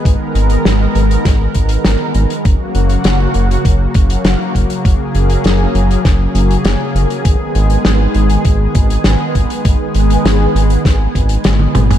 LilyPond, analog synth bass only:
\new Staff \with { instrumentName = "Analog synth bass" } { \clef bass \time 4/4 \key gis \dorian \tempo 4 = 100 gis,,8 gis,,8 gis,,8 gis,,8 gis,,8 gis,,8 gis,,8 gis,,8 | fis,,8 fis,,8 fis,,8 fis,,8 fis,,8 fis,,8 fis,,8 fis,,8 | fis,,8 fis,,8 fis,,8 fis,,8 fis,,8 fis,,8 fis,,8 fis,,8 | gis,,8 gis,,8 gis,,8 gis,,8 gis,,8 gis,,8 gis,,8 gis,,8 |
gis,,8 gis,,8 gis,,8 gis,,8 gis,,8 gis,,8 gis,,8 gis,,8 | }